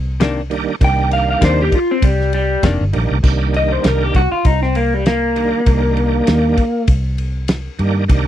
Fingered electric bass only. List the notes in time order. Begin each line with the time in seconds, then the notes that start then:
Already playing: C2
0.81 C2
1.42 D#2
2.03 C2
2.63 F1
2.81 G1
2.95 A#1
3.11 C2
3.24 C2
3.84 C2
4.15 C2
4.45 C2
5.67 C2
6.28 D#2
6.88 C2
7.79 G2
8.09 C2